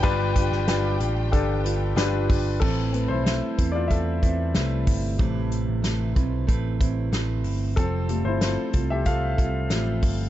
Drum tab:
CC |----------------|x---------------|----------------|----------------|
HH |x-x-x-x-x-x-x-o-|--x-x-x-x-x-x-o-|x-x-x-x-x-x-x-o-|x-x-x-x-x-x-x-o-|
SD |---oo-------o---|----o-------o---|----o-------o---|----o-------o---|
BD |o-o-----o-----o-|o-----o-o-o---o-|o-----o-o-o-----|o-----o-o-o---o-|